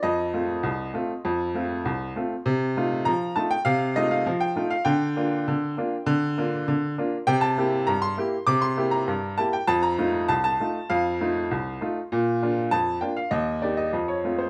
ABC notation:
X:1
M:2/4
L:1/16
Q:1/4=99
K:Fmix
V:1 name="Upright piano"
e8- | e8 | z4 b2 a g | f2 e f2 g2 f |
g8- | g8 | g a3 b c'3 | d' c'2 b3 a g |
a b3 a a3 | f6 z2 | z4 a2 g f | e2 d e2 _d2 c |]
V:2 name="Upright piano"
F,,2 [A,CF]2 C,,2 [A,CF]2 | F,,2 [A,CF]2 C,,2 [A,CF]2 | C,2 [A,EF]2 F,2 [A,EF]2 | C,2 [A,EF]2 F,2 [A,EF]2 |
D,2 [B,DF]2 D,2 [B,DF]2 | D,2 [B,DF]2 D,2 [B,DF]2 | C,2 [B,=EG]2 G,,2 [B,EG]2 | C,2 [B,=EG]2 G,,2 [B,EG]2 |
F,,2 [A,EF]2 C,,2 [A,EF]2 | F,,2 [A,EF]2 C,,2 [A,EF]2 | B,,2 [B,DF]2 F,,2 [B,DF]2 | E,,2 [B,EG]2 F,,2 [A,CF]2 |]